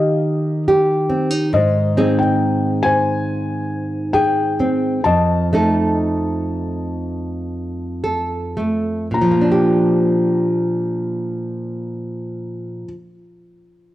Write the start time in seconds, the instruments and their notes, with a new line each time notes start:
Already playing: nylon-string guitar D#3 D#4 G4, felt piano G4 D#5
0.68 nylon-string guitar G4
1.09 nylon-string guitar C4
1.31 nylon-string guitar D#4
1.53 nylon-string guitar G#2, felt piano C5 D#5
1.97 nylon-string guitar C4 D#4 G#4
2.19 felt piano G5
2.83 felt piano C5 G#5
4.13 nylon-string guitar G#4, felt piano G5
4.60 nylon-string guitar C4
5.04 nylon-string guitar F2, felt piano D#5 A5
5.53 nylon-string guitar A3 D#4 A4
8.04 nylon-string guitar A4
8.57 nylon-string guitar A3
9.11 nylon-string guitar A#2, felt piano A#5
9.21 nylon-string guitar F3
9.31 nylon-string guitar A#3
9.41 nylon-string guitar D4
9.51 nylon-string guitar G4